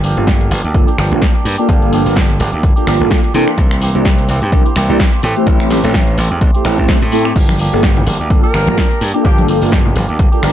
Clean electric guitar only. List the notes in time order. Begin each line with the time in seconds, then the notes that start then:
0.03 F3 A#3 D4 G4
0.27 A#3 D4 G4
0.50 F3 A#3 D4 G4
0.63 A#3 D4 G4
0.87 A#3 D4 G4
0.97 F3 A#3 D4 G4
1.21 F3 A#3 D4 G4
1.34 A#3 D4 G4
1.58 A#3 D4 G4
1.68 F3 A#3 D4 G4
1.92 F3 A#3 D4 G4
2.16 F3 A#3 D4 G4
2.39 F3 A#3 D4 G4
2.52 A#3 D4 G4
2.76 A#3 D4 G4
2.86 F3 A#3 D4 G4
3.11 A#3 D4 G4
3.23 A#3 D4 G4
3.34 E3 A#3 C4 G4
3.81 E3 A#3 C4 G4
4.05 E3 A#3 C4 G4
4.28 E3 A#3 C4 G4
4.41 A#3 C4 G4
4.65 A#3 C4 G4
4.75 E3 A#3 C4 G4
4.99 E3 A#3 C4 G4
5.12 A#3 C4 G4
5.23 E3 A3 C4 G4
5.70 E3 A3 C4 G4
5.94 E3 A3 C4 G4
6.17 E3 A3 C4 G4
6.31 A3 C4 G4
6.54 A3 C4 G4
6.64 E3 A3 C4 G4
6.88 E3 A3 C4 G4
7.01 A3 C4 G4
7.25 A3 C4 G4
7.35 F3 A#3 D4 G4
7.59 F3 A#3 D4 G4
7.83 F3 A#3 D4 G4
8.06 F3 A#3 D4 G4
8.19 A#3 D4 G4
8.43 A#3 D4 G4
8.53 F3 A#3 D4 G4
8.77 F3 A#3 D4 G4
8.90 A#3 D4 G4
9.14 A#3 D4 G4
9.24 F3 A#3 D4 G4
9.48 F3 A#3 D4 G4
9.72 F3 A#3 D4 G4
9.95 F3 A#3 D4 G4
10.08 A#3 D4 G4
10.32 A#3 D4 G4
10.42 F3 A#3 D4 G4